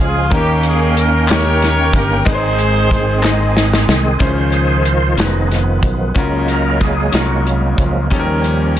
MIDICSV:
0, 0, Header, 1, 6, 480
1, 0, Start_track
1, 0, Key_signature, -5, "major"
1, 0, Tempo, 649351
1, 234, Time_signature, 6, 3, 24, 8
1, 6503, End_track
2, 0, Start_track
2, 0, Title_t, "Horn section"
2, 0, Program_c, 0, 61
2, 0, Note_on_c, 0, 68, 80
2, 24, Note_on_c, 0, 65, 81
2, 214, Note_off_c, 0, 68, 0
2, 249, Note_off_c, 0, 65, 0
2, 253, Note_on_c, 0, 61, 78
2, 257, Note_on_c, 0, 58, 80
2, 265, Note_on_c, 0, 67, 107
2, 474, Note_off_c, 0, 67, 0
2, 505, Note_on_c, 0, 68, 91
2, 729, Note_off_c, 0, 68, 0
2, 733, Note_on_c, 0, 70, 87
2, 933, Note_off_c, 0, 61, 0
2, 935, Note_off_c, 0, 58, 0
2, 948, Note_off_c, 0, 70, 0
2, 957, Note_on_c, 0, 70, 81
2, 962, Note_on_c, 0, 67, 74
2, 968, Note_on_c, 0, 73, 111
2, 1436, Note_off_c, 0, 70, 0
2, 1440, Note_off_c, 0, 73, 0
2, 1445, Note_on_c, 0, 70, 90
2, 1647, Note_off_c, 0, 67, 0
2, 1679, Note_off_c, 0, 70, 0
2, 1679, Note_on_c, 0, 68, 77
2, 1686, Note_on_c, 0, 72, 104
2, 1687, Note_on_c, 0, 63, 69
2, 2606, Note_off_c, 0, 68, 0
2, 2609, Note_off_c, 0, 72, 0
2, 2610, Note_off_c, 0, 63, 0
2, 6503, End_track
3, 0, Start_track
3, 0, Title_t, "Upright piano"
3, 0, Program_c, 1, 0
3, 0, Control_c, 1, 64, 127
3, 0, Note_on_c, 1, 49, 66
3, 0, Note_on_c, 1, 56, 73
3, 0, Note_on_c, 1, 61, 72
3, 0, Note_on_c, 1, 65, 64
3, 0, Note_on_c, 1, 68, 81
3, 224, Note_on_c, 1, 58, 84
3, 234, Note_off_c, 1, 61, 0
3, 234, Note_on_c, 1, 61, 76
3, 234, Note_on_c, 1, 63, 85
3, 240, Note_on_c, 1, 51, 75
3, 241, Note_on_c, 1, 79, 81
3, 244, Control_c, 1, 64, 0
3, 245, Note_off_c, 1, 49, 0
3, 247, Note_off_c, 1, 68, 0
3, 248, Note_off_c, 1, 65, 0
3, 251, Note_off_c, 1, 56, 0
3, 252, Note_on_c, 1, 70, 96
3, 384, Control_c, 1, 64, 127
3, 756, Note_off_c, 1, 58, 0
3, 761, Note_off_c, 1, 61, 0
3, 761, Note_off_c, 1, 63, 0
3, 764, Note_off_c, 1, 79, 0
3, 770, Note_off_c, 1, 70, 0
3, 927, Note_off_c, 1, 51, 0
3, 945, Note_on_c, 1, 58, 75
3, 956, Note_on_c, 1, 61, 71
3, 957, Note_on_c, 1, 63, 68
3, 968, Note_on_c, 1, 67, 70
3, 969, Note_on_c, 1, 73, 82
3, 1476, Note_off_c, 1, 58, 0
3, 1482, Note_off_c, 1, 61, 0
3, 1482, Note_off_c, 1, 63, 0
3, 1487, Note_off_c, 1, 67, 0
3, 1488, Note_off_c, 1, 73, 0
3, 1664, Note_on_c, 1, 56, 91
3, 1670, Note_on_c, 1, 60, 82
3, 1670, Note_on_c, 1, 63, 85
3, 1673, Note_on_c, 1, 44, 67
3, 1675, Note_on_c, 1, 68, 80
3, 1683, Control_c, 1, 64, 0
3, 1684, Note_on_c, 1, 71, 76
3, 1727, Note_off_c, 1, 71, 0
3, 1733, Note_on_c, 1, 72, 95
3, 1813, Control_c, 1, 64, 127
3, 2195, Note_off_c, 1, 56, 0
3, 2198, Note_off_c, 1, 60, 0
3, 2198, Note_off_c, 1, 63, 0
3, 2201, Note_off_c, 1, 68, 0
3, 2230, Note_off_c, 1, 72, 0
3, 2363, Note_off_c, 1, 44, 0
3, 2379, Note_on_c, 1, 56, 83
3, 2380, Note_on_c, 1, 60, 72
3, 2390, Note_on_c, 1, 63, 78
3, 2399, Note_on_c, 1, 68, 78
3, 2405, Note_on_c, 1, 75, 92
3, 2913, Note_off_c, 1, 56, 0
3, 2913, Note_off_c, 1, 60, 0
3, 2918, Note_off_c, 1, 63, 0
3, 2923, Note_off_c, 1, 68, 0
3, 2926, Note_off_c, 1, 75, 0
3, 3098, Note_on_c, 1, 61, 83
3, 3106, Note_on_c, 1, 64, 64
3, 3110, Note_on_c, 1, 49, 64
3, 3113, Note_on_c, 1, 68, 73
3, 3116, Note_on_c, 1, 72, 90
3, 3123, Control_c, 1, 64, 0
3, 3150, Note_on_c, 1, 65, 76
3, 3157, Note_off_c, 1, 64, 0
3, 3247, Control_c, 1, 64, 127
3, 3633, Note_off_c, 1, 61, 0
3, 3640, Note_off_c, 1, 68, 0
3, 3642, Note_off_c, 1, 72, 0
3, 3659, Note_off_c, 1, 65, 0
3, 3802, Note_off_c, 1, 49, 0
3, 3816, Note_on_c, 1, 61, 55
3, 3820, Note_on_c, 1, 65, 53
3, 3836, Note_on_c, 1, 68, 59
3, 3839, Note_on_c, 1, 71, 69
3, 3841, Control_c, 1, 64, 0
3, 3970, Control_c, 1, 64, 127
3, 4352, Note_off_c, 1, 61, 0
3, 4354, Note_off_c, 1, 65, 0
3, 4362, Note_off_c, 1, 68, 0
3, 4363, Note_off_c, 1, 71, 0
3, 4542, Note_on_c, 1, 61, 85
3, 4555, Note_on_c, 1, 65, 75
3, 4557, Note_on_c, 1, 49, 70
3, 4559, Note_on_c, 1, 66, 78
3, 4563, Control_c, 1, 64, 0
3, 4570, Note_on_c, 1, 70, 93
3, 4713, Control_c, 1, 64, 127
3, 5076, Note_off_c, 1, 61, 0
3, 5082, Note_off_c, 1, 65, 0
3, 5084, Note_off_c, 1, 66, 0
3, 5090, Note_off_c, 1, 70, 0
3, 5246, Note_off_c, 1, 49, 0
3, 5261, Note_on_c, 1, 61, 62
3, 5273, Note_on_c, 1, 65, 59
3, 5280, Note_on_c, 1, 66, 57
3, 5284, Note_on_c, 1, 70, 72
3, 5795, Note_off_c, 1, 61, 0
3, 5801, Note_off_c, 1, 65, 0
3, 5805, Note_off_c, 1, 66, 0
3, 5807, Note_off_c, 1, 70, 0
3, 5990, Note_on_c, 1, 61, 89
3, 5998, Note_on_c, 1, 51, 72
3, 6001, Note_on_c, 1, 63, 82
3, 6003, Control_c, 1, 64, 0
3, 6003, Note_on_c, 1, 67, 81
3, 6010, Note_on_c, 1, 69, 73
3, 6051, Note_off_c, 1, 69, 0
3, 6058, Note_on_c, 1, 70, 102
3, 6157, Control_c, 1, 64, 127
3, 6503, Note_off_c, 1, 51, 0
3, 6503, Note_off_c, 1, 61, 0
3, 6503, Note_off_c, 1, 63, 0
3, 6503, Note_off_c, 1, 67, 0
3, 6503, Note_off_c, 1, 70, 0
3, 6503, End_track
4, 0, Start_track
4, 0, Title_t, "Tonewheel organ"
4, 0, Program_c, 2, 16
4, 0, Note_on_c, 2, 53, 73
4, 0, Note_on_c, 2, 56, 61
4, 0, Note_on_c, 2, 61, 63
4, 0, Note_on_c, 2, 68, 71
4, 201, Note_off_c, 2, 56, 0
4, 206, Note_off_c, 2, 68, 0
4, 216, Note_on_c, 2, 58, 71
4, 219, Note_on_c, 2, 79, 81
4, 221, Note_on_c, 2, 51, 70
4, 222, Note_off_c, 2, 53, 0
4, 1646, Note_off_c, 2, 61, 0
4, 1649, Note_off_c, 2, 58, 0
4, 1651, Note_off_c, 2, 79, 0
4, 1679, Note_on_c, 2, 60, 68
4, 1679, Note_on_c, 2, 68, 82
4, 1683, Note_on_c, 2, 56, 62
4, 3076, Note_off_c, 2, 51, 0
4, 3101, Note_off_c, 2, 60, 0
4, 3101, Note_off_c, 2, 68, 0
4, 3103, Note_off_c, 2, 56, 0
4, 3116, Note_on_c, 2, 51, 48
4, 3125, Note_on_c, 2, 72, 54
4, 3126, Note_on_c, 2, 53, 42
4, 3353, Note_on_c, 2, 68, 78
4, 3600, Note_off_c, 2, 68, 0
4, 3602, Note_on_c, 2, 65, 73
4, 3805, Note_off_c, 2, 51, 0
4, 3809, Note_off_c, 2, 72, 0
4, 3810, Note_off_c, 2, 53, 0
4, 3821, Note_off_c, 2, 65, 0
4, 3831, Note_on_c, 2, 51, 44
4, 3833, Note_on_c, 2, 53, 40
4, 3840, Note_on_c, 2, 63, 62
4, 3841, Note_on_c, 2, 59, 49
4, 4060, Note_off_c, 2, 63, 0
4, 4523, Note_off_c, 2, 51, 0
4, 4524, Note_off_c, 2, 53, 0
4, 4528, Note_off_c, 2, 59, 0
4, 4554, Note_on_c, 2, 54, 49
4, 4557, Note_on_c, 2, 56, 45
4, 4566, Note_on_c, 2, 58, 49
4, 4792, Note_on_c, 2, 70, 80
4, 5040, Note_off_c, 2, 70, 0
4, 5046, Note_on_c, 2, 68, 80
4, 5276, Note_on_c, 2, 66, 68
4, 5287, Note_off_c, 2, 68, 0
4, 5499, Note_off_c, 2, 66, 0
4, 5750, Note_off_c, 2, 56, 0
4, 5751, Note_off_c, 2, 58, 0
4, 5753, Note_on_c, 2, 53, 44
4, 5759, Note_on_c, 2, 56, 39
4, 5760, Note_on_c, 2, 58, 51
4, 5966, Note_off_c, 2, 54, 0
4, 5970, Note_off_c, 2, 53, 0
4, 5973, Note_off_c, 2, 56, 0
4, 5974, Note_off_c, 2, 58, 0
4, 6000, Note_on_c, 2, 55, 44
4, 6001, Note_on_c, 2, 53, 51
4, 6005, Note_on_c, 2, 61, 56
4, 6503, Note_off_c, 2, 53, 0
4, 6503, Note_off_c, 2, 55, 0
4, 6503, Note_off_c, 2, 61, 0
4, 6503, End_track
5, 0, Start_track
5, 0, Title_t, "Fingered electric bass"
5, 0, Program_c, 3, 33
5, 0, Note_on_c, 3, 37, 93
5, 213, Note_off_c, 3, 37, 0
5, 233, Note_on_c, 3, 39, 113
5, 1402, Note_off_c, 3, 39, 0
5, 1426, Note_on_c, 3, 31, 100
5, 1650, Note_off_c, 3, 31, 0
5, 1673, Note_on_c, 3, 32, 117
5, 2843, Note_off_c, 3, 32, 0
5, 2869, Note_on_c, 3, 36, 85
5, 3091, Note_off_c, 3, 36, 0
5, 3107, Note_on_c, 3, 37, 86
5, 3800, Note_off_c, 3, 37, 0
5, 3826, Note_on_c, 3, 29, 92
5, 4280, Note_off_c, 3, 29, 0
5, 4305, Note_on_c, 3, 35, 83
5, 4530, Note_off_c, 3, 35, 0
5, 4552, Note_on_c, 3, 37, 94
5, 5244, Note_off_c, 3, 37, 0
5, 5273, Note_on_c, 3, 36, 99
5, 5725, Note_off_c, 3, 36, 0
5, 5752, Note_on_c, 3, 37, 78
5, 5974, Note_off_c, 3, 37, 0
5, 5997, Note_on_c, 3, 39, 99
5, 6503, Note_off_c, 3, 39, 0
5, 6503, End_track
6, 0, Start_track
6, 0, Title_t, "Drums"
6, 232, Note_on_c, 9, 42, 100
6, 233, Note_on_c, 9, 36, 115
6, 306, Note_off_c, 9, 42, 0
6, 307, Note_off_c, 9, 36, 0
6, 468, Note_on_c, 9, 42, 51
6, 542, Note_off_c, 9, 42, 0
6, 717, Note_on_c, 9, 42, 78
6, 791, Note_off_c, 9, 42, 0
6, 947, Note_on_c, 9, 39, 88
6, 953, Note_on_c, 9, 42, 110
6, 970, Note_on_c, 9, 38, 127
6, 1021, Note_off_c, 9, 39, 0
6, 1027, Note_off_c, 9, 42, 0
6, 1044, Note_off_c, 9, 38, 0
6, 1199, Note_on_c, 9, 42, 51
6, 1209, Note_on_c, 9, 38, 36
6, 1273, Note_off_c, 9, 42, 0
6, 1283, Note_off_c, 9, 38, 0
6, 1430, Note_on_c, 9, 36, 96
6, 1435, Note_on_c, 9, 42, 83
6, 1504, Note_off_c, 9, 36, 0
6, 1509, Note_off_c, 9, 42, 0
6, 1674, Note_on_c, 9, 36, 114
6, 1677, Note_on_c, 9, 42, 86
6, 1748, Note_off_c, 9, 36, 0
6, 1750, Note_off_c, 9, 42, 0
6, 1913, Note_on_c, 9, 42, 47
6, 1987, Note_off_c, 9, 42, 0
6, 2151, Note_on_c, 9, 42, 81
6, 2152, Note_on_c, 9, 36, 101
6, 2161, Note_on_c, 9, 38, 34
6, 2225, Note_off_c, 9, 42, 0
6, 2226, Note_off_c, 9, 36, 0
6, 2234, Note_off_c, 9, 38, 0
6, 2389, Note_on_c, 9, 39, 86
6, 2399, Note_on_c, 9, 38, 66
6, 2463, Note_off_c, 9, 39, 0
6, 2473, Note_off_c, 9, 38, 0
6, 2636, Note_on_c, 9, 38, 75
6, 2710, Note_off_c, 9, 38, 0
6, 2760, Note_on_c, 9, 38, 90
6, 2834, Note_off_c, 9, 38, 0
6, 2875, Note_on_c, 9, 38, 103
6, 2949, Note_off_c, 9, 38, 0
6, 3104, Note_on_c, 9, 42, 82
6, 3107, Note_on_c, 9, 36, 98
6, 3178, Note_off_c, 9, 42, 0
6, 3181, Note_off_c, 9, 36, 0
6, 3342, Note_on_c, 9, 42, 41
6, 3416, Note_off_c, 9, 42, 0
6, 3588, Note_on_c, 9, 42, 66
6, 3662, Note_off_c, 9, 42, 0
6, 3826, Note_on_c, 9, 42, 92
6, 3843, Note_on_c, 9, 38, 109
6, 3900, Note_off_c, 9, 42, 0
6, 3917, Note_off_c, 9, 38, 0
6, 4076, Note_on_c, 9, 42, 41
6, 4086, Note_on_c, 9, 38, 31
6, 4150, Note_off_c, 9, 42, 0
6, 4159, Note_off_c, 9, 38, 0
6, 4308, Note_on_c, 9, 36, 81
6, 4309, Note_on_c, 9, 42, 70
6, 4381, Note_off_c, 9, 36, 0
6, 4383, Note_off_c, 9, 42, 0
6, 4550, Note_on_c, 9, 42, 81
6, 4551, Note_on_c, 9, 36, 102
6, 4623, Note_off_c, 9, 42, 0
6, 4625, Note_off_c, 9, 36, 0
6, 4792, Note_on_c, 9, 42, 40
6, 4866, Note_off_c, 9, 42, 0
6, 5032, Note_on_c, 9, 42, 68
6, 5035, Note_on_c, 9, 36, 85
6, 5042, Note_on_c, 9, 38, 29
6, 5106, Note_off_c, 9, 42, 0
6, 5108, Note_off_c, 9, 36, 0
6, 5116, Note_off_c, 9, 38, 0
6, 5267, Note_on_c, 9, 42, 96
6, 5285, Note_on_c, 9, 38, 109
6, 5341, Note_off_c, 9, 42, 0
6, 5359, Note_off_c, 9, 38, 0
6, 5519, Note_on_c, 9, 42, 46
6, 5593, Note_off_c, 9, 42, 0
6, 5752, Note_on_c, 9, 36, 82
6, 5755, Note_on_c, 9, 42, 66
6, 5826, Note_off_c, 9, 36, 0
6, 5828, Note_off_c, 9, 42, 0
6, 5998, Note_on_c, 9, 36, 104
6, 5998, Note_on_c, 9, 42, 77
6, 6071, Note_off_c, 9, 42, 0
6, 6072, Note_off_c, 9, 36, 0
6, 6239, Note_on_c, 9, 42, 47
6, 6313, Note_off_c, 9, 42, 0
6, 6480, Note_on_c, 9, 42, 70
6, 6503, Note_off_c, 9, 42, 0
6, 6503, End_track
0, 0, End_of_file